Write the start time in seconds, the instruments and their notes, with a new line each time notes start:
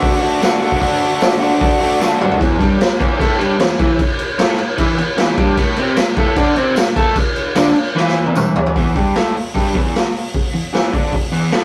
Already playing: overdriven electric guitar D3 A3 D4 F#4
0.03 kick, open hi-hat
0.21 overdriven electric guitar A3 D4 F#4, open hi-hat
0.41 overdriven electric guitar D3 A3 D4 F#4, snare, open hi-hat, tambourine
0.60 overdriven electric guitar A3 D4 F#4, open hi-hat
0.72 kick
0.80 overdriven electric guitar D3 A3 D4 F#4, kick, open hi-hat
1.02 open hi-hat
1.21 snare, open hi-hat, tambourine
1.40 overdriven electric guitar A3 D4 F#4, open hi-hat
1.61 kick, open hi-hat
1.79 overdriven electric guitar A3 D4 F#4, open hi-hat
1.99 overdriven electric guitar D3 A3 D4 F#4, snare, tambourine
2.18 overdriven electric guitar A3 D4 F#4, mid tom
2.31 floor tom
2.38 overdriven electric guitar E2 E3, kick, crash
2.59 overdriven electric guitar G2 G3, kick, crash
2.79 muted overdriven electric guitar stroke, snare, crash
2.99 overdriven electric guitar E2 E3, kick, crash
3.18 overdriven electric guitar A2 A3, kick, crash
3.38 overdriven electric guitar G2 G3, crash
3.58 overdriven electric guitar E2, snare, crash
3.79 overdriven electric guitar E3 E4, kick, crash
3.99 kick, crash
4.19 crash
4.38 overdriven electric guitar A2 A3, snare, crash
4.58 muted overdriven electric guitar stroke, crash
4.77 overdriven electric guitar E3 E4, kick, crash
4.98 overdriven electric guitar E2, crash
5.17 overdriven electric guitar E2 E3, snare, crash
5.37 overdriven electric guitar G2 G3, kick, crash
5.57 overdriven electric guitar A2 A3, kick, crash
5.76 overdriven electric guitar C3 C4, crash
5.96 muted overdriven electric guitar stroke, snare, tambourine, crash
6.17 overdriven electric guitar A2 A3, kick, crash
6.36 overdriven electric guitar D3 D4, kick, crash
6.56 overdriven electric guitar C3 C4, crash
6.76 overdriven electric guitar A2, snare, tambourine, crash
6.96 overdriven electric guitar A3 A4, kick, crash
7.16 kick, crash
7.36 crash
7.55 overdriven electric guitar D3 D4, snare, tambourine, crash
7.76 muted overdriven electric guitar stroke, crash
7.96 overdriven electric guitar E3 E4, snare
8.08 snare
8.26 high tom
8.35 mid tom, tambourine
8.56 floor tom
8.66 floor tom
8.76 overdriven electric guitar E2 E3, kick, open hi-hat
8.95 overdriven electric guitar G2 G3, kick, open hi-hat
9.15 overdriven electric guitar A2 A3, snare, open hi-hat
9.36 muted overdriven electric guitar stroke, open hi-hat
9.54 overdriven electric guitar G2 G3, kick, open hi-hat
9.75 overdriven electric guitar E2 E3, kick, open hi-hat
9.95 snare, open hi-hat
10.16 open hi-hat
10.34 kick, open hi-hat
10.54 overdriven electric guitar E2, open hi-hat
10.73 overdriven electric guitar E2 E3, snare, open hi-hat
10.92 overdriven electric guitar D3 D4, kick, open hi-hat
11.12 overdriven electric guitar E2, kick, open hi-hat
11.32 overdriven electric guitar E2 E3, open hi-hat
11.52 overdriven electric guitar A2 A3, snare, open hi-hat